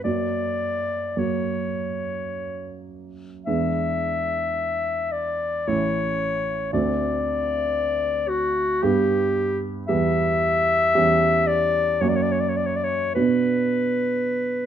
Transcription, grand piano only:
0.04 1.13 F#2 soft
0.04 1.13 F#3 soft
0.04 1.14 A#3 soft
0.04 1.14 F#4 soft
1.17 3.43 F#2 soft
1.17 3.43 F#3 soft
1.17 3.43 A#3 soft
1.17 3.43 F#4 soft
3.47 5.64 E2 soft
3.47 5.64 G#3 soft
3.47 5.64 B3 soft
3.47 5.64 D4 soft
5.67 6.69 A1 soft
5.67 6.69 A3 soft
5.67 6.70 C#4 soft
5.67 6.70 E4 soft
6.73 8.79 D2 soft
6.73 8.79 A3 soft
6.73 8.79 C4 soft
6.73 8.79 F#4 soft
8.83 9.86 G2 medium
8.83 9.86 G3 soft
8.83 9.86 B3 soft
8.83 9.86 G4 soft
9.89 10.92 E2 medium
9.89 10.92 G3 soft
9.89 10.93 B3 soft
9.89 10.93 G4 soft
10.95 11.98 E2 soft
10.95 11.98 G3 soft
10.95 11.98 C#4 soft
10.95 11.98 G4 soft
12.01 13.13 F#2 soft
12.01 13.13 A#3 soft
12.01 13.13 C#4 soft
12.01 13.13 F#4 soft
13.16 14.66 B2 soft
13.16 14.66 B3 soft
13.16 14.66 D4 soft
13.16 14.66 F#4 soft

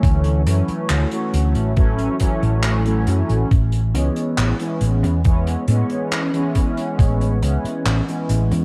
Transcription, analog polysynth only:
0.00 0.41 E3 loud
0.00 0.41 F#3 medium
0.00 0.42 A3 medium
0.00 0.42 C#4 loud
0.46 1.07 E3 medium
0.46 1.07 F#3 medium
0.46 1.07 A3 medium
0.46 1.07 C#4 medium
1.11 1.72 E3 medium
1.11 1.72 F#3 medium
1.11 1.72 A3 medium
1.11 1.72 C#4 medium
1.77 2.15 E3 medium
1.77 2.15 F#3 medium
1.77 2.16 A3 medium
1.77 2.16 C#4 loud
2.20 2.81 E3 medium
2.20 2.81 F#3 medium
2.20 2.81 A3 medium
2.20 2.81 C#4 loud
2.85 3.48 E3 medium
2.85 3.48 F#3 medium
2.85 3.48 A3 medium
2.85 3.49 C#4 loud
3.94 4.54 E3 medium
3.94 4.55 G#3 medium
3.94 4.55 B3 medium
3.94 4.55 C#4 medium
4.59 5.19 E3 medium
4.59 5.20 G#3 medium
4.59 5.20 B3 medium
4.59 5.20 C#4 medium
5.24 5.63 E3 medium
5.24 5.63 G#3 medium
5.24 5.64 B3 medium
5.24 5.64 C#4 loud
5.68 6.28 E3 medium
5.68 6.29 G#3 medium
5.68 6.29 B3 medium
5.68 6.29 C#4 loud
6.33 7.37 E3 medium
6.33 7.37 G#3 medium
6.33 7.38 B3 medium
6.33 7.38 C#4 loud
7.42 8.02 E3 medium
7.42 8.02 G#3 medium
7.42 8.03 B3 medium
7.42 8.03 C#4 medium
8.08 8.65 E3 medium
8.08 8.65 G#3 medium
8.08 8.65 B3 medium
8.08 8.65 C#4 medium

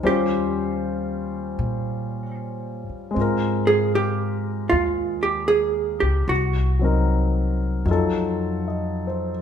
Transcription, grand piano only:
0.03 3.17 G3 medium
0.03 3.17 C#4 soft
0.03 3.16 F4 soft
0.03 3.17 C5 medium
3.11 6.27 G#3 soft
3.11 6.29 C4 soft
3.18 6.31 F4 soft
3.18 6.32 A#4 medium
6.79 7.84 F#3 soft
6.79 7.88 C4 soft
6.79 7.85 D#4 soft
6.84 7.89 A#4 soft
7.85 9.42 F#3 soft
7.85 9.42 D#4 soft
7.85 9.42 F4 soft
7.91 9.42 A4 medium
8.68 9.30 D#5 soft
9.07 9.42 C5 soft

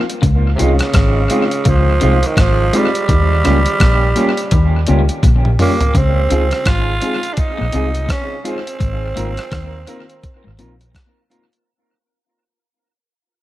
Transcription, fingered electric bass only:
0.24 0.56 C#2 loud
0.61 0.79 C2 medium
0.95 1.27 G#1 loud
1.67 1.98 C#2 loud
2.03 2.22 C2 medium
2.38 2.70 G#1 loud
3.10 3.41 D#2 loud
3.46 3.65 C#2 medium
3.81 4.13 A#1 loud
4.53 4.84 D#2 loud
4.89 5.08 C#2 medium
5.24 5.56 A#1 medium
5.96 6.27 C#2 loud
6.31 6.50 C#2 loud
6.67 6.98 G#1 medium
7.61 7.73 A#1 medium
7.74 8.06 C2 loud
8.81 9.13 G#1 loud
9.18 9.37 G#1 loud
9.53 9.84 D#2 loud
10.47 10.59 G#1 medium
10.61 10.92 A#1 medium

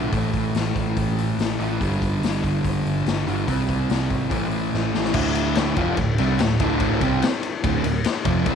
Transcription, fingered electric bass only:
0.13 0.31 A1 medium
0.34 0.52 A1 medium
0.55 0.72 A1 medium
0.76 0.93 A1 medium
0.97 1.32 A1 medium
1.39 1.56 A1 medium
1.59 1.77 A1 medium
1.81 1.98 G1 medium
2.02 2.19 G1 medium
2.22 2.40 G1 medium
2.44 2.61 G1 medium
2.65 2.82 G1 medium
2.85 3.03 G1 medium
3.06 3.24 G1 medium
3.27 3.45 G1 medium
3.48 3.65 C2 medium
3.69 3.86 C2 medium
3.89 4.07 C2 medium
4.11 4.28 G#1 medium
4.31 4.66 A1 medium
4.74 4.91 A1 medium
4.94 5.12 A1 medium
5.14 5.73 D1 medium
5.77 5.97 F1 medium
5.97 6.17 D1 medium
6.19 6.38 C2 loud
6.40 6.59 D1 medium
6.60 6.99 D1 medium
7.01 7.21 C2 loud
7.64 7.83 D1 loud
7.84 8.03 D1 medium
8.25 8.45 F1 loud
8.46 8.55 C2 medium

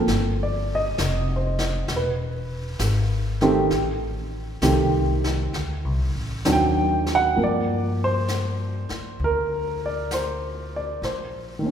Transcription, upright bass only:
0.07 0.95 G1 medium
0.99 1.86 F1 medium
1.89 2.77 E1 medium
2.79 3.68 G#1 medium
3.71 4.59 A1 medium
4.62 5.50 C2 medium
5.53 5.84 D2 medium
5.84 6.14 C2 medium
6.15 6.43 A1 medium
6.45 7.34 D#2 medium
7.37 8.86 G2 medium
8.91 muted upright bass stroke soft
9.20 10.98 D2 medium
11.02 11.71 A#1 medium

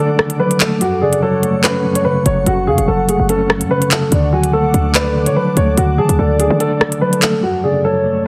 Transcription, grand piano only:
0.00 0.37 A4 medium
0.40 0.56 B4 medium
0.60 0.77 A4 medium
0.81 0.97 F#4 medium
1.02 1.18 G#4 medium
1.23 1.61 A4 medium
1.64 1.93 B4 medium
1.95 2.03 C#5 medium
2.05 2.21 B4 medium
2.26 2.42 C#5 medium
2.47 2.63 F#4 medium
2.67 2.84 G#4 medium
2.88 3.04 A4 medium
3.09 3.25 G#4 medium
3.30 3.68 A4 medium
3.71 3.87 B4 medium
3.91 4.08 A4 medium
4.13 4.29 D4 medium
4.33 4.49 F#4 medium
4.53 4.92 A4 medium
4.95 5.25 B4 loud
5.27 5.34 C#5 medium
5.36 5.53 B4 medium
5.57 5.73 C#5 medium
5.77 5.94 F#4 medium
5.98 6.15 G#4 medium
6.19 6.35 A4 medium
6.40 6.56 G#4 medium
6.60 6.99 A4 medium
7.01 7.18 B4 medium
7.22 7.39 A4 medium
7.43 7.59 F#4 medium
7.64 7.80 G#4 medium
7.85 8.23 A4 medium

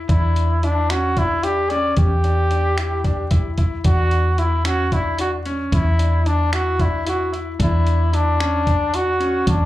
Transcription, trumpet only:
0.10 0.66 E4 medium
0.64 0.91 D4 medium
0.90 1.20 F#4 medium
1.18 1.45 E4 medium
1.44 1.72 G4 medium
1.70 1.97 D5 medium
1.97 3.54 G4 medium
3.86 4.41 F#4 medium
4.39 4.65 E4 medium
4.66 4.95 F#4 medium
4.93 5.19 E4 medium
5.20 5.32 F#4 medium
5.74 6.29 E4 medium
6.27 6.53 D4 medium
6.54 6.82 F#4 medium
6.81 7.07 E4 medium
7.07 7.32 F#4 medium
7.62 8.16 E4 medium
8.14 8.96 D4 medium
8.95 9.48 F#4 medium
9.49 9.65 D4 medium

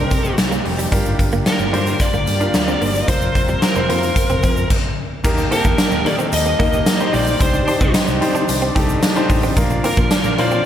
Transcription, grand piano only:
0.00 0.94 C4 medium
0.00 0.94 D#4 medium
0.00 0.92 G4 medium
0.00 0.94 A4 medium
0.00 0.93 A#4 loud
0.00 0.40 C5 medium
0.92 1.54 D4 medium
0.92 1.54 F4 medium
0.92 1.54 G4 medium
0.92 1.54 A#4 medium
1.73 2.25 D4 medium
1.73 2.25 F4 medium
1.73 2.25 G4 medium
1.73 2.25 C5 medium
2.40 2.92 D4 medium
2.40 2.92 F4 medium
2.40 2.93 G4 medium
2.40 2.93 A#4 medium
3.08 3.60 C4 medium
3.08 3.60 F4 medium
3.08 3.60 A#4 medium
3.08 3.60 C5 medium
3.75 3.86 C4 medium
3.75 3.86 F4 medium
3.75 3.86 A#4 medium
3.75 3.86 C5 medium
3.89 4.70 C4 medium
3.89 4.70 F4 medium
3.89 4.71 A#4 medium
3.89 4.71 C5 medium
5.24 5.45 A#3 medium
5.24 5.45 D#4 medium
5.24 5.45 G4 medium
5.24 5.45 A#4 medium
5.51 5.92 A#3 medium
5.51 5.93 D#4 medium
5.51 5.93 G4 medium
5.51 5.93 A5 medium
6.05 6.47 A#3 medium
6.05 6.47 D#4 medium
6.05 6.47 G4 medium
6.05 6.47 A4 medium
6.59 6.90 A#3 medium
6.59 6.91 D#4 medium
6.59 6.91 G4 medium
6.59 6.91 A#4 medium
6.99 7.31 A#3 medium
6.99 7.31 D#4 medium
6.99 7.31 G4 medium
6.99 7.31 C5 medium
7.40 7.61 D4 medium
7.40 7.61 D#4 medium
7.40 7.61 G4 medium
7.40 7.62 C5 medium
7.67 8.09 D4 medium
7.67 8.09 D#4 medium
7.67 8.09 G4 medium
7.67 8.09 C5 medium
8.21 8.63 D4 medium
8.21 8.63 D#4 medium
8.21 8.63 G4 medium
8.21 8.63 C5 loud
8.75 9.06 D4 medium
8.75 9.07 D#4 medium
8.75 9.07 G4 medium
8.75 9.07 A4 loud
9.16 9.47 D4 loud
9.16 9.47 D#4 medium
9.16 9.47 G4 medium
9.16 9.48 C5 medium
9.56 9.77 A#3 medium
9.56 9.77 D4 medium
9.56 9.78 F4 medium
9.56 9.78 A#4 loud
9.83 10.25 A#3 medium
9.83 10.25 D4 medium
9.83 10.25 F4 medium
9.83 10.26 A#4 medium
10.38 10.66 A#3 medium
10.38 10.44 C#4 medium
10.38 10.66 F4 medium
10.38 10.66 C5 medium
10.44 10.66 D4 medium

